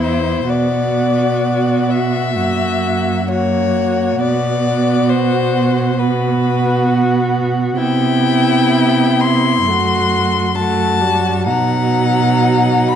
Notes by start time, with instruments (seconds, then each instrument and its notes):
Already playing: cello E2, viola B3, violin E4
0.01 violin C5
0.49 cello B2, viola B3, violin F#4 D5
1.90 violin E5
2.36 cello F#2, viola A#3, violin F#4
3.29 viola A#3, violin F#4 C#5
4.20 cello B2, viola B3, violin F#4 D5
5.09 violin C5
5.99 viola B3, violin F#4 B4
7.77 cello C3, viola B3, violin E4 G5
9.21 violin C6
9.67 cello F#2, viola A3, violin F#4
10.55 viola A3, violin F#4 A5
11.01 viola G3
11.47 cello B2, viola F#3, violin D#4 F#5
12.88 violin B5